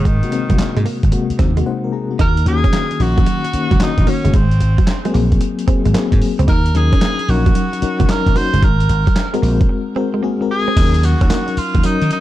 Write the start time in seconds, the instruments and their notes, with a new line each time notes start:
0.05 slap bass G#1, tenor saxophone D#3, clean electric guitar G#3, kick, closed hi-hat
0.22 fm electric piano C3 G#3 A#3 F#4, closed hi-hat
0.32 fm electric piano C3 G#3 A#3 C4, muted clean electric guitar stroke, closed hi-hat
0.49 slap bass C2, fm electric piano C3 G#3 A#3 F#4, clean electric guitar F#3, kick, closed hi-hat
0.59 muted clean electric guitar stroke, muted slap bass stroke, snare, clap, closed hi-hat
0.77 slap bass G#2, clean electric guitar G#3, closed hi-hat
0.85 clean electric guitar A#3, open hi-hat
1.03 slap bass G#1, kick, closed hi-hat
1.12 fm electric piano C3 G#3 A#3 F#4, muted clean electric guitar stroke, closed hi-hat
1.30 muted slap bass stroke, closed hi-hat
1.39 slap bass D#2, clean electric guitar C4, kick, snare, closed hi-hat
1.56 fm electric piano C3 G#3 A#3 F#4, clean electric guitar G#3, closed hi-hat
1.66 fm electric piano D#4 C5 F#5
1.84 fm electric piano A#4
1.92 fm electric piano C4 G#4 A#5
2.11 fm electric piano A#3 F#4
2.19 slap bass D#2, clean electric guitar D#4, tenor saxophone A#4, kick, closed hi-hat
2.37 closed hi-hat
2.46 slap bass D#2, fm electric piano D#3 A#3 C#4 F#4, tenor saxophone G#4, muted clean electric guitar stroke, closed hi-hat
2.64 clean electric guitar C#4, kick, closed hi-hat
2.73 clean electric guitar A#3, snare, clap, closed hi-hat
2.91 muted clean electric guitar stroke, closed hi-hat
2.99 slap bass A#1, fm electric piano D#3 A#3 C#4 F#4, tenor saxophone F#4, open hi-hat
3.18 clean electric guitar F#3, kick, closed hi-hat
3.26 clean electric guitar F#3, closed hi-hat
3.44 muted clean electric guitar stroke, closed hi-hat
3.53 fm electric piano D#3 A#3 C#4 F#4, muted slap bass stroke, closed hi-hat
3.71 slap bass C#2, clean electric guitar F#3, kick, closed hi-hat
3.80 fm electric piano D#3 A#3 C#4 F#4, tenor saxophone D#4, muted clean electric guitar stroke, snare, clap, closed hi-hat
3.98 slap bass A#1, kick, closed hi-hat
4.07 fm electric piano D#3 A#3 C#4 F#4, clean electric guitar A#3, tenor saxophone C#4, open hi-hat
4.25 slap bass F#1, clean electric guitar G#3, closed hi-hat
4.34 slap bass G#1, clean electric guitar G#3, tenor saxophone C4, kick, closed hi-hat
4.51 closed hi-hat
4.60 slap bass G#1, muted clean electric guitar stroke, closed hi-hat
4.78 clean electric guitar F#3, kick, closed hi-hat
4.87 muted clean electric guitar stroke, snare, clap, closed hi-hat
5.05 fm electric piano F#3 A#3 C4 G#4, clean electric guitar G#3, closed hi-hat
5.14 slap bass A#1, clean electric guitar A#3, open hi-hat
5.32 kick, closed hi-hat
5.41 muted clean electric guitar stroke, closed hi-hat
5.59 closed hi-hat
5.67 fm electric piano F#3 A#3 C4 G#4, clean electric guitar C4, muted slap bass stroke, kick, closed hi-hat
5.85 slap bass G#1, clean electric guitar G#3, closed hi-hat
5.94 fm electric piano F#3 A#3 C4 G#4, clean electric guitar A#3, snare, clap, closed hi-hat
6.12 slap bass G#2, fm electric piano F#3 A#3 C4 G#4, muted clean electric guitar stroke, kick, closed hi-hat
6.22 open hi-hat
6.39 slap bass C#2, clean electric guitar C4, closed hi-hat
6.48 slap bass D#2, clean electric guitar D#4, tenor saxophone A#4, kick, closed hi-hat
6.66 closed hi-hat
6.75 slap bass D#2, fm electric piano F#3 C#4 D#4 A#4, tenor saxophone G#4, muted clean electric guitar stroke, closed hi-hat
6.93 clean electric guitar C#4, kick, closed hi-hat
7.01 clean electric guitar A#3, snare, clap, closed hi-hat
7.19 muted clean electric guitar stroke, closed hi-hat
7.28 slap bass A#1, fm electric piano F#3 C#4 D#4 A#4, tenor saxophone F#4, open hi-hat
7.46 clean electric guitar F#3, kick, closed hi-hat
7.55 clean electric guitar F#3, closed hi-hat
7.73 muted clean electric guitar stroke, closed hi-hat
7.82 fm electric piano F#3 C#4 D#4 A#4, muted slap bass stroke, closed hi-hat
8.00 slap bass C#2, clean electric guitar F#3, kick, closed hi-hat
8.09 fm electric piano F#3 C#4 D#4 A#4, tenor saxophone A#4, muted slap bass stroke, muted clean electric guitar stroke, snare, clap, closed hi-hat
8.26 slap bass A#1, kick, closed hi-hat
8.36 fm electric piano F#3 C#4 D#4 F#4, clean electric guitar A#3, tenor saxophone C5, open hi-hat
8.53 slap bass F#1, clean electric guitar G#3, closed hi-hat
8.62 slap bass G#1, clean electric guitar G#3, tenor saxophone A#4, kick, closed hi-hat
8.80 closed hi-hat
8.89 slap bass G#1, muted clean electric guitar stroke, closed hi-hat
9.07 clean electric guitar F#3, kick, closed hi-hat
9.16 muted clean electric guitar stroke, snare, clap, closed hi-hat
9.34 fm electric piano G#3 C4 F#4 A#4, clean electric guitar G#3, closed hi-hat
9.42 slap bass A#1, clean electric guitar A#3, open hi-hat
9.61 kick, closed hi-hat
9.69 muted clean electric guitar stroke
9.96 fm electric piano G#3 C4 F#4 A#4, clean electric guitar C4
10.14 clean electric guitar G#3
10.23 fm electric piano G#3 C4 F#4 G#4, clean electric guitar A#3
10.41 fm electric piano G#3 C4 F#4 A#4, muted clean electric guitar stroke
10.51 tenor saxophone G#4
10.68 clean electric guitar C4
10.77 slap bass D#2, fm electric piano F#3 C#4 D#4 A#4, clean electric guitar D#4, kick, closed hi-hat, crash, tambourine
10.94 closed hi-hat
11.03 tenor saxophone F#4, muted clean electric guitar stroke, closed hi-hat, tambourine
11.21 slap bass D#2, clean electric guitar C#4, kick, closed hi-hat
11.30 fm electric piano F#3 C#4 D#4 A#4, clean electric guitar A#3, snare, clap, closed hi-hat, tambourine
11.48 muted clean electric guitar stroke, closed hi-hat
11.57 tenor saxophone F4, muted slap bass stroke, open hi-hat, tambourine
11.75 slap bass D#2, clean electric guitar F#3, kick, closed hi-hat
11.83 fm electric piano F#3 C#4 D#4 A#4, clean electric guitar F#3, tenor saxophone D#4, muted slap bass stroke, closed hi-hat, tambourine
12.02 slap bass D#3, muted clean electric guitar stroke, closed hi-hat
12.11 tenor saxophone D#4, closed hi-hat